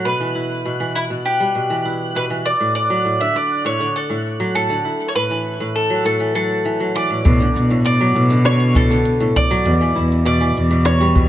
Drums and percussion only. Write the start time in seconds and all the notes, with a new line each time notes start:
7.25 kick, closed hi-hat, shaker
7.56 shaker
7.71 shaker
7.85 closed hi-hat, shaker
8.16 shaker
8.30 closed hi-hat, shaker
8.45 snare, closed hi-hat, shaker
8.60 closed hi-hat
8.75 kick, shaker
8.91 shaker
9.05 closed hi-hat, shaker
9.20 closed hi-hat
9.36 kick, shaker
9.51 shaker
9.66 closed hi-hat, shaker
9.97 shaker
10.12 shaker
10.26 closed hi-hat, shaker
10.57 shaker
10.71 closed hi-hat, shaker
10.85 snare, closed hi-hat, shaker
11.01 closed hi-hat
11.15 kick, shaker